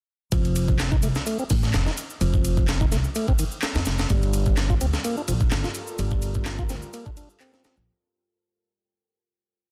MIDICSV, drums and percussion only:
0, 0, Header, 1, 2, 480
1, 0, Start_track
1, 0, Key_signature, -2, "minor"
1, 0, Tempo, 472441
1, 327, Time_signature, 4, 2, 24, 8
1, 9866, End_track
2, 0, Start_track
2, 0, Title_t, "Drums"
2, 324, Note_on_c, 9, 82, 44
2, 326, Note_on_c, 9, 51, 88
2, 327, Note_on_c, 9, 36, 116
2, 426, Note_off_c, 9, 82, 0
2, 427, Note_off_c, 9, 51, 0
2, 428, Note_off_c, 9, 36, 0
2, 456, Note_on_c, 9, 51, 45
2, 456, Note_on_c, 9, 82, 21
2, 557, Note_off_c, 9, 82, 0
2, 558, Note_off_c, 9, 51, 0
2, 567, Note_on_c, 9, 51, 85
2, 567, Note_on_c, 9, 82, 76
2, 569, Note_off_c, 9, 51, 0
2, 569, Note_on_c, 9, 51, 69
2, 668, Note_off_c, 9, 82, 0
2, 670, Note_off_c, 9, 51, 0
2, 694, Note_on_c, 9, 82, 33
2, 695, Note_on_c, 9, 36, 95
2, 795, Note_off_c, 9, 82, 0
2, 797, Note_off_c, 9, 36, 0
2, 806, Note_on_c, 9, 39, 105
2, 806, Note_on_c, 9, 82, 45
2, 809, Note_on_c, 9, 38, 125
2, 809, Note_on_c, 9, 51, 93
2, 908, Note_off_c, 9, 39, 0
2, 908, Note_off_c, 9, 82, 0
2, 911, Note_off_c, 9, 38, 0
2, 911, Note_off_c, 9, 51, 0
2, 930, Note_on_c, 9, 82, 22
2, 936, Note_on_c, 9, 36, 97
2, 1032, Note_off_c, 9, 82, 0
2, 1037, Note_off_c, 9, 36, 0
2, 1041, Note_on_c, 9, 51, 90
2, 1041, Note_on_c, 9, 82, 78
2, 1048, Note_off_c, 9, 51, 0
2, 1048, Note_on_c, 9, 51, 70
2, 1142, Note_off_c, 9, 82, 0
2, 1150, Note_off_c, 9, 51, 0
2, 1170, Note_on_c, 9, 82, 34
2, 1177, Note_on_c, 9, 38, 58
2, 1271, Note_off_c, 9, 82, 0
2, 1279, Note_off_c, 9, 38, 0
2, 1284, Note_on_c, 9, 82, 45
2, 1291, Note_on_c, 9, 51, 85
2, 1385, Note_off_c, 9, 82, 0
2, 1393, Note_off_c, 9, 51, 0
2, 1409, Note_on_c, 9, 82, 22
2, 1511, Note_off_c, 9, 82, 0
2, 1524, Note_on_c, 9, 51, 92
2, 1524, Note_on_c, 9, 82, 79
2, 1529, Note_on_c, 9, 36, 100
2, 1529, Note_on_c, 9, 46, 82
2, 1625, Note_off_c, 9, 51, 0
2, 1625, Note_off_c, 9, 82, 0
2, 1630, Note_off_c, 9, 36, 0
2, 1631, Note_off_c, 9, 46, 0
2, 1653, Note_on_c, 9, 82, 33
2, 1657, Note_on_c, 9, 38, 42
2, 1754, Note_off_c, 9, 82, 0
2, 1759, Note_off_c, 9, 38, 0
2, 1766, Note_on_c, 9, 39, 105
2, 1766, Note_on_c, 9, 82, 44
2, 1769, Note_on_c, 9, 38, 116
2, 1769, Note_on_c, 9, 51, 87
2, 1867, Note_off_c, 9, 39, 0
2, 1867, Note_off_c, 9, 82, 0
2, 1870, Note_off_c, 9, 38, 0
2, 1870, Note_off_c, 9, 51, 0
2, 1894, Note_on_c, 9, 82, 22
2, 1897, Note_on_c, 9, 38, 53
2, 1996, Note_off_c, 9, 82, 0
2, 1998, Note_off_c, 9, 38, 0
2, 2006, Note_on_c, 9, 51, 87
2, 2006, Note_on_c, 9, 82, 78
2, 2009, Note_off_c, 9, 51, 0
2, 2009, Note_on_c, 9, 51, 67
2, 2108, Note_off_c, 9, 82, 0
2, 2111, Note_off_c, 9, 51, 0
2, 2134, Note_on_c, 9, 82, 33
2, 2236, Note_off_c, 9, 82, 0
2, 2246, Note_on_c, 9, 51, 92
2, 2246, Note_on_c, 9, 82, 44
2, 2348, Note_off_c, 9, 51, 0
2, 2348, Note_off_c, 9, 82, 0
2, 2374, Note_on_c, 9, 36, 100
2, 2377, Note_on_c, 9, 82, 22
2, 2476, Note_off_c, 9, 36, 0
2, 2478, Note_off_c, 9, 82, 0
2, 2485, Note_on_c, 9, 51, 74
2, 2485, Note_on_c, 9, 82, 75
2, 2587, Note_off_c, 9, 51, 0
2, 2587, Note_off_c, 9, 82, 0
2, 2613, Note_on_c, 9, 82, 34
2, 2614, Note_on_c, 9, 36, 94
2, 2715, Note_off_c, 9, 82, 0
2, 2716, Note_off_c, 9, 36, 0
2, 2724, Note_on_c, 9, 39, 112
2, 2724, Note_on_c, 9, 82, 45
2, 2730, Note_on_c, 9, 38, 120
2, 2730, Note_on_c, 9, 51, 94
2, 2826, Note_off_c, 9, 39, 0
2, 2826, Note_off_c, 9, 82, 0
2, 2831, Note_off_c, 9, 38, 0
2, 2831, Note_off_c, 9, 51, 0
2, 2853, Note_on_c, 9, 82, 22
2, 2855, Note_on_c, 9, 36, 97
2, 2954, Note_off_c, 9, 82, 0
2, 2957, Note_off_c, 9, 36, 0
2, 2966, Note_on_c, 9, 51, 85
2, 2966, Note_on_c, 9, 82, 76
2, 2969, Note_off_c, 9, 51, 0
2, 2969, Note_on_c, 9, 38, 46
2, 2969, Note_on_c, 9, 51, 69
2, 3068, Note_off_c, 9, 82, 0
2, 3071, Note_off_c, 9, 38, 0
2, 3071, Note_off_c, 9, 51, 0
2, 3091, Note_on_c, 9, 82, 34
2, 3192, Note_off_c, 9, 82, 0
2, 3201, Note_on_c, 9, 82, 44
2, 3211, Note_on_c, 9, 51, 86
2, 3303, Note_off_c, 9, 82, 0
2, 3312, Note_off_c, 9, 51, 0
2, 3331, Note_on_c, 9, 82, 23
2, 3335, Note_on_c, 9, 36, 96
2, 3433, Note_off_c, 9, 82, 0
2, 3436, Note_off_c, 9, 36, 0
2, 3441, Note_on_c, 9, 51, 87
2, 3441, Note_on_c, 9, 82, 77
2, 3450, Note_off_c, 9, 51, 0
2, 3450, Note_on_c, 9, 51, 71
2, 3543, Note_off_c, 9, 82, 0
2, 3551, Note_off_c, 9, 51, 0
2, 3570, Note_on_c, 9, 82, 32
2, 3672, Note_off_c, 9, 82, 0
2, 3681, Note_on_c, 9, 39, 109
2, 3681, Note_on_c, 9, 82, 44
2, 3687, Note_on_c, 9, 38, 111
2, 3687, Note_on_c, 9, 51, 80
2, 3783, Note_off_c, 9, 39, 0
2, 3783, Note_off_c, 9, 82, 0
2, 3789, Note_off_c, 9, 38, 0
2, 3789, Note_off_c, 9, 51, 0
2, 3806, Note_on_c, 9, 82, 22
2, 3817, Note_on_c, 9, 38, 104
2, 3817, Note_on_c, 9, 51, 79
2, 3907, Note_off_c, 9, 82, 0
2, 3917, Note_off_c, 9, 51, 0
2, 3917, Note_on_c, 9, 51, 86
2, 3917, Note_on_c, 9, 82, 80
2, 3919, Note_off_c, 9, 38, 0
2, 3930, Note_off_c, 9, 51, 0
2, 3930, Note_on_c, 9, 38, 99
2, 3930, Note_on_c, 9, 51, 77
2, 4019, Note_off_c, 9, 82, 0
2, 4032, Note_off_c, 9, 38, 0
2, 4032, Note_off_c, 9, 51, 0
2, 4047, Note_on_c, 9, 82, 35
2, 4058, Note_on_c, 9, 38, 104
2, 4058, Note_on_c, 9, 51, 80
2, 4149, Note_off_c, 9, 82, 0
2, 4160, Note_off_c, 9, 38, 0
2, 4160, Note_off_c, 9, 51, 0
2, 4161, Note_on_c, 9, 82, 44
2, 4167, Note_on_c, 9, 36, 116
2, 4167, Note_on_c, 9, 51, 92
2, 4263, Note_off_c, 9, 82, 0
2, 4268, Note_off_c, 9, 36, 0
2, 4268, Note_off_c, 9, 51, 0
2, 4291, Note_on_c, 9, 82, 21
2, 4297, Note_on_c, 9, 51, 46
2, 4392, Note_off_c, 9, 82, 0
2, 4399, Note_off_c, 9, 51, 0
2, 4403, Note_on_c, 9, 51, 80
2, 4403, Note_on_c, 9, 82, 73
2, 4410, Note_off_c, 9, 51, 0
2, 4410, Note_on_c, 9, 51, 73
2, 4505, Note_off_c, 9, 82, 0
2, 4511, Note_off_c, 9, 51, 0
2, 4529, Note_on_c, 9, 82, 33
2, 4534, Note_on_c, 9, 36, 95
2, 4631, Note_off_c, 9, 82, 0
2, 4635, Note_off_c, 9, 36, 0
2, 4645, Note_on_c, 9, 39, 117
2, 4645, Note_on_c, 9, 82, 45
2, 4646, Note_on_c, 9, 38, 123
2, 4646, Note_on_c, 9, 51, 92
2, 4746, Note_off_c, 9, 39, 0
2, 4746, Note_off_c, 9, 82, 0
2, 4748, Note_off_c, 9, 38, 0
2, 4748, Note_off_c, 9, 51, 0
2, 4774, Note_on_c, 9, 36, 94
2, 4774, Note_on_c, 9, 82, 21
2, 4875, Note_off_c, 9, 36, 0
2, 4876, Note_off_c, 9, 82, 0
2, 4886, Note_on_c, 9, 51, 83
2, 4886, Note_on_c, 9, 82, 75
2, 4887, Note_off_c, 9, 51, 0
2, 4887, Note_on_c, 9, 51, 70
2, 4988, Note_off_c, 9, 82, 0
2, 4989, Note_off_c, 9, 51, 0
2, 5013, Note_on_c, 9, 82, 33
2, 5014, Note_on_c, 9, 38, 61
2, 5114, Note_off_c, 9, 82, 0
2, 5115, Note_off_c, 9, 38, 0
2, 5125, Note_on_c, 9, 51, 88
2, 5127, Note_on_c, 9, 82, 43
2, 5227, Note_off_c, 9, 51, 0
2, 5228, Note_off_c, 9, 82, 0
2, 5254, Note_on_c, 9, 82, 22
2, 5356, Note_off_c, 9, 82, 0
2, 5364, Note_on_c, 9, 51, 64
2, 5367, Note_off_c, 9, 51, 0
2, 5367, Note_on_c, 9, 51, 85
2, 5367, Note_on_c, 9, 82, 80
2, 5469, Note_off_c, 9, 51, 0
2, 5469, Note_off_c, 9, 82, 0
2, 5491, Note_on_c, 9, 82, 33
2, 5493, Note_on_c, 9, 36, 89
2, 5592, Note_off_c, 9, 82, 0
2, 5595, Note_off_c, 9, 36, 0
2, 5601, Note_on_c, 9, 39, 114
2, 5601, Note_on_c, 9, 82, 44
2, 5604, Note_on_c, 9, 38, 118
2, 5604, Note_on_c, 9, 51, 92
2, 5703, Note_off_c, 9, 39, 0
2, 5703, Note_off_c, 9, 82, 0
2, 5706, Note_off_c, 9, 38, 0
2, 5706, Note_off_c, 9, 51, 0
2, 5732, Note_on_c, 9, 38, 55
2, 5732, Note_on_c, 9, 82, 21
2, 5834, Note_off_c, 9, 38, 0
2, 5834, Note_off_c, 9, 82, 0
2, 5838, Note_on_c, 9, 51, 85
2, 5838, Note_on_c, 9, 82, 77
2, 5845, Note_off_c, 9, 51, 0
2, 5845, Note_on_c, 9, 51, 67
2, 5940, Note_off_c, 9, 82, 0
2, 5947, Note_off_c, 9, 51, 0
2, 5967, Note_on_c, 9, 82, 34
2, 6069, Note_off_c, 9, 82, 0
2, 6080, Note_on_c, 9, 82, 43
2, 6086, Note_on_c, 9, 51, 90
2, 6182, Note_off_c, 9, 82, 0
2, 6188, Note_off_c, 9, 51, 0
2, 6206, Note_on_c, 9, 82, 21
2, 6214, Note_on_c, 9, 36, 98
2, 6308, Note_off_c, 9, 82, 0
2, 6315, Note_off_c, 9, 36, 0
2, 6319, Note_on_c, 9, 51, 77
2, 6319, Note_on_c, 9, 82, 72
2, 6327, Note_off_c, 9, 51, 0
2, 6327, Note_on_c, 9, 51, 73
2, 6421, Note_off_c, 9, 82, 0
2, 6429, Note_off_c, 9, 51, 0
2, 6446, Note_on_c, 9, 82, 31
2, 6453, Note_on_c, 9, 36, 95
2, 6547, Note_off_c, 9, 82, 0
2, 6555, Note_off_c, 9, 36, 0
2, 6559, Note_on_c, 9, 39, 113
2, 6559, Note_on_c, 9, 82, 43
2, 6563, Note_on_c, 9, 38, 127
2, 6563, Note_on_c, 9, 51, 92
2, 6660, Note_off_c, 9, 39, 0
2, 6660, Note_off_c, 9, 82, 0
2, 6665, Note_off_c, 9, 38, 0
2, 6665, Note_off_c, 9, 51, 0
2, 6689, Note_on_c, 9, 82, 21
2, 6694, Note_on_c, 9, 36, 99
2, 6791, Note_off_c, 9, 82, 0
2, 6795, Note_off_c, 9, 36, 0
2, 6800, Note_on_c, 9, 51, 79
2, 6800, Note_on_c, 9, 82, 76
2, 6808, Note_off_c, 9, 51, 0
2, 6808, Note_on_c, 9, 38, 47
2, 6808, Note_on_c, 9, 51, 72
2, 6902, Note_off_c, 9, 82, 0
2, 6910, Note_off_c, 9, 38, 0
2, 6910, Note_off_c, 9, 51, 0
2, 6931, Note_on_c, 9, 82, 32
2, 7033, Note_off_c, 9, 82, 0
2, 7044, Note_on_c, 9, 82, 44
2, 7049, Note_on_c, 9, 51, 85
2, 7146, Note_off_c, 9, 82, 0
2, 7151, Note_off_c, 9, 51, 0
2, 7172, Note_on_c, 9, 82, 22
2, 7175, Note_on_c, 9, 36, 98
2, 7274, Note_off_c, 9, 82, 0
2, 7277, Note_off_c, 9, 36, 0
2, 7283, Note_on_c, 9, 51, 82
2, 7283, Note_on_c, 9, 82, 73
2, 7289, Note_off_c, 9, 51, 0
2, 7289, Note_on_c, 9, 51, 75
2, 7385, Note_off_c, 9, 82, 0
2, 7391, Note_off_c, 9, 51, 0
2, 7413, Note_on_c, 9, 82, 31
2, 7515, Note_off_c, 9, 82, 0
2, 7522, Note_on_c, 9, 39, 112
2, 7522, Note_on_c, 9, 82, 42
2, 7528, Note_on_c, 9, 51, 91
2, 7624, Note_off_c, 9, 39, 0
2, 7624, Note_off_c, 9, 82, 0
2, 7630, Note_off_c, 9, 51, 0
2, 7653, Note_on_c, 9, 82, 21
2, 7658, Note_on_c, 9, 38, 46
2, 7755, Note_off_c, 9, 82, 0
2, 7759, Note_off_c, 9, 38, 0
2, 7767, Note_on_c, 9, 51, 79
2, 7767, Note_on_c, 9, 82, 74
2, 7771, Note_off_c, 9, 51, 0
2, 7771, Note_on_c, 9, 38, 110
2, 7771, Note_on_c, 9, 51, 67
2, 7869, Note_off_c, 9, 82, 0
2, 7872, Note_off_c, 9, 38, 0
2, 7872, Note_off_c, 9, 51, 0
2, 7891, Note_on_c, 9, 82, 31
2, 7993, Note_off_c, 9, 82, 0
2, 9866, End_track
0, 0, End_of_file